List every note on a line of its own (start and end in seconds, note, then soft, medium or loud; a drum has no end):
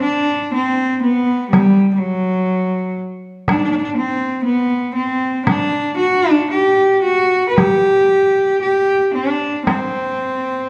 0.02 0.50 D4 medium
0.53 1.00 C4 medium
1.02 1.48 B3 medium
1.49 1.90 G3 medium
1.49 taiko rim medium
1.49 taiko high medium
1.93 2.00 G3 soft
1.99 2.99 F#3 medium
3.48 3.56 D4 medium
3.48 taiko rim medium
3.48 taiko high medium
3.57 3.63 D4 medium
3.64 3.70 D4 medium
3.71 3.77 D4 medium
3.78 3.82 D4 medium
3.83 3.90 D4 medium
3.96 4.42 C4 medium
4.44 4.91 B3 medium
4.94 5.42 C4 medium
5.46 5.94 D4 medium
5.46 taiko rim medium
5.46 taiko high medium
5.97 6.31 F#4 medium
6.31 6.47 D4 medium
6.50 7.00 G4 medium
7.03 7.46 F#4 medium
7.49 7.58 B4 medium
7.57 8.61 G4 medium
7.57 taiko rim soft
7.57 taiko high medium
8.62 9.10 G4 medium
9.14 9.63 D4 medium
9.66 10.69 C4 medium
9.66 taiko rim medium
9.66 taiko high medium